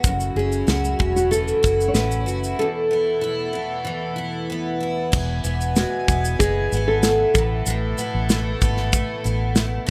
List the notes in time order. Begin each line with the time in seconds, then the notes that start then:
Already playing: F#3 B3 F#4
0.03 F#1 F#2 C#3 F#3 A3 E4, kick, shaker
0.20 shaker
0.36 F#1 C#4 G#4
0.52 shaker
0.67 C#2 F#4, snare, shaker
0.85 shaker
0.99 E1 C#4, kick
1.16 F#4, shaker
1.31 E3 A4, shaker
1.48 shaker
1.63 F#1 F#4, kick, shaker
1.81 shaker
1.88 C#5
1.94 A1 C#4 B4, snare, shaker
2.11 shaker
2.26 F#1 F#4, shaker
2.44 shaker
2.59 E2 B2 E3 A4
2.91 B3
3.21 E4
3.53 B3
3.85 E3
4.16 E4
4.50 B3
4.80 E4
5.12 E1 E2 B2 E3 B3 E4 G#5, kick, crash
5.44 E1 B3, shaker
5.61 shaker
5.76 G#3 F#4, snare, shaker
6.08 E1 B3, kick, shaker
6.25 shaker
6.39 F#1 G#3 G#4, kick, shaker
6.72 G#1 B3, shaker
6.88 A4
7.03 snare, shaker
7.33 A1 A2 A3 A4 B4, kick, shaker
7.66 A1 A2, shaker
7.98 B3, shaker
8.15 A1
8.29 A3, snare, shaker
8.56 A4
8.61 G#1 B3, kick, shaker
8.77 snare
8.93 A3, kick, shaker
9.24 A1 B3, shaker
9.56 A3, snare, shaker
9.86 B2